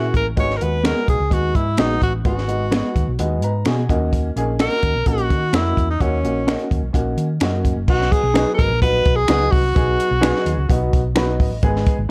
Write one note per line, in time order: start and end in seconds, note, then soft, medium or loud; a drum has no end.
0.00 0.10 A#2 medium
0.00 0.22 A#3 medium
0.00 0.22 C#4 medium
0.00 0.23 E4 medium
0.00 0.12 F#4 medium
0.00 0.23 G#4 medium
0.14 0.34 A1 medium
0.14 0.27 A#4 medium
0.14 kick medium
0.14 closed hi-hat medium
0.36 0.58 G#1 medium
0.36 0.53 G#3 medium
0.36 0.53 B3 medium
0.36 0.53 D#4 medium
0.36 0.53 F#4 medium
0.36 0.59 C#5 medium
0.36 kick medium
0.36 closed hi-hat medium
0.50 snare soft
0.57 0.77 G#3 medium
0.57 0.65 A#4 medium
0.57 closed hi-hat medium
0.61 0.92 D#2 medium
0.61 0.77 B3 medium
0.61 0.77 D#4 medium
0.61 0.77 F#4 medium
0.61 0.87 B4 medium
0.83 1.16 G#3 medium
0.83 0.99 B3 medium
0.83 1.16 B3 medium
0.83 1.16 D#4 medium
0.83 0.99 F#4 medium
0.83 1.16 F#4 medium
0.83 0.99 G#4 medium
0.83 1.08 A#4 medium
0.83 0.99 D#5 medium
0.83 finger snap medium
0.83 snare loud
0.83 closed hi-hat medium
1.08 1.18 B1 medium
1.08 1.34 G#4 medium
1.08 kick medium
1.08 closed hi-hat medium
1.20 1.30 C#2 medium
1.30 1.51 D#2 medium
1.30 1.63 G#3 medium
1.30 1.63 B3 medium
1.30 1.63 D#4 medium
1.30 1.57 F#4 medium
1.30 1.63 G#4 medium
1.30 kick medium
1.30 closed hi-hat medium
1.55 1.75 G#2 medium
1.55 1.81 E4 medium
1.55 kick medium
1.55 closed hi-hat medium
1.77 1.98 A#1 medium
1.77 2.10 G#3 medium
1.77 1.93 B3 medium
1.77 2.10 B3 medium
1.77 2.11 D#4 medium
1.77 2.02 D#4 medium
1.77 1.93 F#4 medium
1.77 2.11 F#4 medium
1.77 1.93 G#4 medium
1.77 1.94 D#5 medium
1.77 finger snap medium
1.77 snare medium
1.77 closed hi-hat medium
2.02 2.22 A1 medium
2.02 2.13 F#4 medium
2.02 kick medium
2.02 closed hi-hat medium
2.25 2.81 G#1 medium
2.25 2.41 G#3 medium
2.25 2.41 B3 medium
2.25 2.41 D#4 medium
2.25 2.41 F#4 medium
2.25 3.16 F#4 medium
2.25 kick medium
2.25 closed hi-hat medium
2.38 snare soft
2.48 2.64 G#3 medium
2.48 2.64 B3 medium
2.48 2.64 D#4 medium
2.48 2.65 F#4 medium
2.48 closed hi-hat medium
2.71 3.04 G#3 medium
2.71 2.86 B3 medium
2.71 3.04 B3 medium
2.71 3.04 D#4 medium
2.71 2.87 F#4 medium
2.71 3.04 F#4 medium
2.71 2.87 G#4 medium
2.71 2.87 D#5 medium
2.71 finger snap medium
2.71 snare loud
2.71 closed hi-hat medium
2.96 3.06 D#2 medium
2.96 kick medium
2.96 closed hi-hat medium
3.08 3.18 B1 medium
3.19 3.43 D#2 medium
3.19 3.51 G#3 medium
3.19 3.51 B3 medium
3.19 3.51 D#4 medium
3.19 3.43 F#4 medium
3.19 closed hi-hat medium
3.42 3.63 G#2 loud
3.42 3.66 B4 medium
3.42 3.65 A#5 medium
3.42 closed hi-hat medium
3.65 3.81 B3 medium
3.65 3.89 F#4 medium
3.65 3.81 F#4 medium
3.65 3.81 G#4 medium
3.65 3.82 D#5 medium
3.65 3.88 G#5 medium
3.65 finger snap medium
3.65 snare medium
3.65 closed hi-hat medium
3.89 4.30 D#2 medium
3.89 4.27 A#3 medium
3.89 4.27 C#4 medium
3.89 4.28 D#4 medium
3.89 4.27 F#4 medium
3.89 4.11 D#5 medium
3.89 kick medium
3.89 closed hi-hat medium
4.13 kick medium
4.13 closed hi-hat medium
4.36 4.67 A#1 medium
4.36 4.52 A#3 medium
4.36 4.53 C#4 medium
4.36 4.53 D#4 medium
4.36 4.53 G#4 medium
4.36 closed hi-hat medium
4.59 4.92 A#3 medium
4.59 4.74 C#4 medium
4.59 4.92 C#4 medium
4.59 4.92 D#4 medium
4.59 4.75 F#4 medium
4.59 4.92 F#4 medium
4.59 5.09 A#4 loud
4.59 4.75 A#4 medium
4.59 4.75 D#5 medium
4.59 finger snap medium
4.59 snare loud
4.59 closed hi-hat medium
4.71 snare soft
4.71 closed hi-hat soft
4.83 4.93 D#2 medium
4.83 kick medium
4.83 closed hi-hat medium
4.95 5.05 B1 medium
5.06 5.32 A#1 medium
5.06 5.39 A#3 medium
5.06 5.39 C#4 medium
5.06 5.39 D#4 medium
5.06 5.56 F#4 medium
5.06 5.39 F#4 medium
5.06 kick medium
5.06 closed hi-hat loud
5.18 closed hi-hat soft
5.30 5.51 D#3 medium
5.30 kick medium
5.30 closed hi-hat medium
5.53 5.73 F2 medium
5.53 5.86 A#3 medium
5.53 5.68 C#4 medium
5.53 5.86 C#4 medium
5.53 5.90 E4 medium
5.53 5.69 F#4 medium
5.53 5.86 F#4 medium
5.53 5.69 A#4 loud
5.53 5.86 D#5 medium
5.53 5.69 D#5 loud
5.53 finger snap medium
5.53 snare medium
5.53 closed hi-hat medium
5.77 5.97 E2 medium
5.77 kick medium
5.77 closed hi-hat medium
5.90 6.03 D#4 medium
6.00 6.21 D#2 medium
6.00 6.16 A#3 medium
6.00 6.16 C#4 medium
6.00 6.72 C#4 medium
6.00 6.17 D#4 medium
6.00 6.17 F#4 loud
6.00 kick medium
6.00 closed hi-hat medium
6.23 6.54 A#1 medium
6.23 6.40 A#3 medium
6.23 6.40 C#4 medium
6.23 6.40 D#4 medium
6.23 6.41 F#4 medium
6.23 closed hi-hat medium
6.47 6.79 A#3 medium
6.47 6.62 C#4 medium
6.47 6.79 C#4 medium
6.47 6.80 D#4 medium
6.47 6.80 F#4 medium
6.47 6.63 F#4 medium
6.47 6.63 A#4 medium
6.47 6.63 D#5 medium
6.47 finger snap medium
6.47 snare loud
6.47 closed hi-hat medium
6.59 closed hi-hat soft
6.71 6.81 D#2 medium
6.71 kick medium
6.71 closed hi-hat medium
6.82 6.92 B1 medium
6.93 7.15 A#1 medium
6.93 7.26 A#3 medium
6.93 7.26 C#4 medium
6.93 7.26 D#4 medium
6.93 7.27 F#4 medium
6.93 kick medium
6.93 closed hi-hat loud
7.17 7.38 D#3 medium
7.17 closed hi-hat medium
7.40 7.71 F#2 medium
7.40 7.73 A#3 medium
7.40 7.56 C#4 medium
7.40 7.73 C#4 medium
7.40 7.74 D#4 medium
7.40 7.56 F#4 medium
7.40 7.74 F#4 medium
7.40 7.57 A#4 medium
7.40 7.57 D#5 medium
7.40 finger snap medium
7.40 snare medium
7.40 closed hi-hat medium
7.65 kick medium
7.65 closed hi-hat medium
7.76 7.86 F#1 medium
7.88 8.09 B1 loud
7.88 8.20 F#3 medium
7.88 8.21 B3 medium
7.88 8.21 D#4 medium
7.88 8.21 F#4 medium
7.88 8.13 F#4 medium
7.88 kick medium
7.88 crash medium
8.01 snare soft
8.12 8.53 G#4 loud
8.12 kick medium
8.12 closed hi-hat medium
8.23 8.44 B1 loud
8.34 8.67 F#3 medium
8.34 8.67 B3 medium
8.34 8.49 D#4 medium
8.34 8.68 D#4 medium
8.34 8.50 F#4 medium
8.34 8.68 G#4 medium
8.34 8.50 B4 medium
8.34 8.50 D#5 medium
8.34 finger snap loud
8.34 snare loud
8.34 closed hi-hat medium
8.55 8.60 A4 medium
8.55 8.81 A#4 loud
8.59 8.69 G#1 medium
8.59 kick loud
8.59 closed hi-hat medium
8.70 9.01 A#1 medium
8.82 9.14 F#3 medium
8.82 9.14 B3 medium
8.82 9.14 D#4 medium
8.82 9.14 F#4 medium
8.82 9.18 B4 loud
8.82 kick loud
8.82 closed hi-hat loud
9.05 9.26 B1 medium
9.05 kick loud
9.05 closed hi-hat medium
9.16 9.52 G#4 loud
9.28 9.49 C#2 loud
9.28 9.61 F#3 medium
9.28 9.61 B3 medium
9.28 9.43 D#4 medium
9.28 9.61 D#4 medium
9.28 9.44 F#4 medium
9.28 9.61 F#4 medium
9.28 9.44 B4 loud
9.28 9.44 D#5 loud
9.28 finger snap medium
9.28 snare loud
9.28 closed hi-hat medium
9.51 9.73 C2 medium
9.51 10.92 F#4 medium
9.51 kick medium
9.51 open hi-hat medium
9.75 9.96 B1 loud
9.75 10.07 F#3 medium
9.75 10.07 B3 medium
9.75 10.08 D#4 medium
9.75 10.08 G#4 medium
9.75 kick loud
9.75 closed hi-hat medium
10.00 closed hi-hat medium
10.11 10.31 B1 loud
10.20 10.53 F#3 medium
10.20 10.54 B3 medium
10.20 10.54 D#4 medium
10.20 10.37 D#4 medium
10.20 10.37 F#4 medium
10.20 10.54 G#4 loud
10.20 10.38 B4 medium
10.20 10.38 D#5 medium
10.20 finger snap loud
10.20 snare loud
10.20 closed hi-hat loud
10.36 snare soft
10.45 10.56 D#2 medium
10.45 closed hi-hat medium
10.57 10.68 C#2 medium
10.69 10.90 B1 loud
10.69 11.01 F#3 medium
10.69 11.01 B3 medium
10.69 11.02 D#4 medium
10.69 11.02 F#4 medium
10.69 kick loud
10.69 closed hi-hat loud
10.93 11.40 B1 medium
10.93 kick loud
10.93 closed hi-hat medium
11.15 11.48 F#3 medium
11.15 11.48 B3 medium
11.15 11.31 D#4 loud
11.15 11.48 D#4 medium
11.15 11.31 F#4 medium
11.15 11.49 F#4 loud
11.15 11.31 B4 medium
11.15 11.31 D#5 loud
11.15 11.38 B5 medium
11.15 finger snap loud
11.15 snare loud
11.15 closed hi-hat medium
11.40 11.60 A1 loud
11.40 11.62 D#5 medium
11.40 kick medium
11.40 open hi-hat medium
11.63 11.83 G#1 loud
11.63 11.95 G#3 medium
11.63 11.95 B3 medium
11.63 11.95 D#4 medium
11.63 11.95 G#4 loud
11.63 kick medium
11.63 closed hi-hat medium
11.76 snare soft
11.86 kick medium
11.86 closed hi-hat medium
11.98 12.08 G#1 loud